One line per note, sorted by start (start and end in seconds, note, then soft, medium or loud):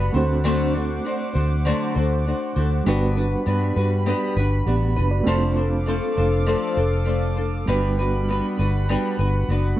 0.00 0.12 G3 medium
0.00 0.16 G3 medium
0.00 0.14 B3 medium
0.00 0.16 B3 medium
0.00 0.11 D4 medium
0.00 0.15 D4 medium
0.00 0.11 F#4 medium
0.00 0.13 F#4 medium
0.00 0.12 B4 medium
0.00 0.14 B4 medium
0.00 5.23 F#5 medium
0.00 0.12 B5 medium
0.13 0.99 D2 loud
0.13 2.51 A3 medium
0.13 2.51 C4 medium
0.13 2.52 D4 medium
0.13 0.43 D4 medium
0.13 0.44 F#4 medium
0.13 2.53 F#4 medium
0.13 0.44 C5 medium
0.13 2.84 C5 medium
0.17 0.43 A3 soft
0.17 2.53 C5 medium
0.17 2.84 D6 medium
0.44 0.74 D3 loud
0.44 0.75 F#3 medium
0.44 0.75 A3 loud
0.44 0.75 D4 loud
0.44 0.74 F#4 loud
0.44 0.73 C5 loud
0.74 1.03 A3 medium
0.74 1.04 D4 medium
0.74 1.05 F#4 medium
0.74 1.05 C5 medium
1.05 1.35 A3 medium
1.05 1.35 D4 medium
1.05 1.34 F#4 medium
1.05 1.33 C5 medium
1.35 1.71 D2 loud
1.35 1.65 A3 soft
1.35 1.65 D4 soft
1.35 1.65 F#4 medium
1.35 1.65 C5 medium
1.65 1.95 D3 medium
1.65 1.96 F#3 medium
1.65 1.96 A3 medium
1.65 1.96 D4 loud
1.65 1.95 F#4 loud
1.65 1.94 C5 medium
1.95 2.32 D2 medium
1.95 2.25 A3 medium
1.95 2.26 D4 soft
1.95 2.26 F#4 medium
1.95 2.25 C5 medium
2.26 2.56 A3 medium
2.26 2.57 D4 medium
2.26 2.55 F#4 medium
2.26 2.55 C5 medium
2.56 2.80 D2 loud
2.56 2.86 A3 medium
2.56 2.86 D4 soft
2.56 2.86 F#4 medium
2.56 2.86 C5 medium
2.84 3.34 G1 loud
2.84 5.22 G3 medium
2.84 5.25 G3 medium
2.84 3.16 G3 loud
2.84 4.63 B3 medium
2.84 3.16 B3 loud
2.84 4.63 D4 medium
2.84 3.17 D4 loud
2.84 4.64 F#4 medium
2.84 3.16 F#4 loud
2.84 5.25 B5 medium
2.88 3.16 B4 loud
2.88 4.65 B4 medium
3.17 3.45 D4 soft
3.17 3.46 F#4 medium
3.17 3.47 B4 medium
3.46 3.71 G2 medium
3.46 3.76 B3 medium
3.46 3.77 D4 medium
3.46 3.76 F#4 medium
3.46 3.75 B4 medium
3.76 4.12 G2 loud
3.76 4.06 D4 medium
3.76 4.06 F#4 medium
3.76 4.06 B4 medium
4.06 4.36 G3 medium
4.06 4.37 B3 loud
4.06 4.37 D4 medium
4.06 4.37 F#4 loud
4.06 4.36 B4 loud
4.36 4.61 G1 loud
4.36 4.66 D4 medium
4.36 4.67 F#4 medium
4.36 4.67 B4 medium
4.66 4.98 A1 loud
4.66 4.97 B3 medium
4.66 4.96 B3 medium
4.66 4.97 D4 medium
4.66 4.96 F#4 medium
4.66 4.95 G4 medium
4.66 4.95 B4 medium
4.96 5.21 F#1 medium
4.96 5.11 D4 medium
4.96 5.26 D4 soft
4.96 5.27 F#4 medium
4.96 5.27 B4 medium
4.96 5.11 B4 medium
5.11 5.40 F#4 medium
5.11 5.40 D5 medium
5.23 5.99 F1 loud
5.23 5.57 F3 loud
5.23 7.62 A3 medium
5.23 5.57 A3 medium
5.23 7.63 C4 medium
5.23 7.64 D4 medium
5.23 5.57 D4 loud
5.23 7.64 F4 medium
5.23 7.66 A4 medium
5.23 7.66 F5 medium
5.23 7.66 D6 medium
5.28 5.56 A4 loud
5.28 5.55 C5 loud
5.28 7.65 C5 medium
5.56 5.86 D4 medium
5.56 5.86 A4 medium
5.56 5.87 C5 medium
5.86 6.17 A3 medium
5.86 6.17 D4 medium
5.86 6.17 A4 medium
5.86 6.15 C5 medium
6.17 6.54 F1 loud
6.17 6.46 D4 medium
6.17 6.47 A4 medium
6.17 6.46 C5 medium
6.46 6.77 F3 medium
6.46 6.77 A3 loud
6.46 6.77 D4 medium
6.46 6.76 A4 loud
6.46 6.75 C5 loud
6.76 7.64 F1 loud
6.76 7.05 D4 medium
6.76 7.05 A4 medium
6.76 7.06 C5 medium
7.05 7.37 A3 medium
7.05 7.36 D4 medium
7.05 7.36 A4 medium
7.05 7.35 C5 medium
7.36 7.67 D4 medium
7.36 7.68 A4 medium
7.36 7.67 C5 medium
7.66 8.40 G1 loud
7.66 9.74 G3 medium
7.66 9.76 G3 medium
7.66 7.98 G3 loud
7.66 9.74 B3 medium
7.66 7.98 B3 loud
7.66 9.75 D4 medium
7.66 7.99 D4 loud
7.66 7.98 F#4 loud
7.66 9.75 F#4 medium
7.66 7.98 B4 loud
7.66 9.80 F#5 medium
7.66 9.76 B5 medium
7.70 9.76 B4 medium
7.99 8.28 D4 soft
7.99 8.29 F#4 medium
7.99 8.29 B4 medium
8.28 8.59 B3 medium
8.28 8.59 D4 medium
8.28 8.59 F#4 medium
8.28 8.58 B4 medium
8.59 8.95 G1 loud
8.59 8.88 D4 soft
8.59 8.89 F#4 medium
8.59 8.89 B4 medium
8.89 9.19 G3 loud
8.89 9.19 B3 loud
8.89 9.19 D4 loud
8.89 9.19 F#4 loud
8.89 9.18 B4 medium
9.19 9.43 G1 loud
9.19 9.49 D4 medium
9.19 9.49 F#4 medium
9.19 9.49 B4 medium
9.49 9.73 F#1 loud
9.49 9.79 B3 medium
9.49 9.80 D4 medium
9.49 9.79 F#4 medium
9.49 9.79 B4 medium
9.76 9.80 A3 medium